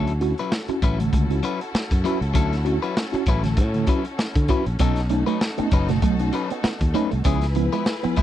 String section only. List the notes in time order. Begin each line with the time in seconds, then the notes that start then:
Already playing: C#4 E4 F#4 A4
4.80 D#4 F#4 A4
7.26 E4 F4 G#4 B4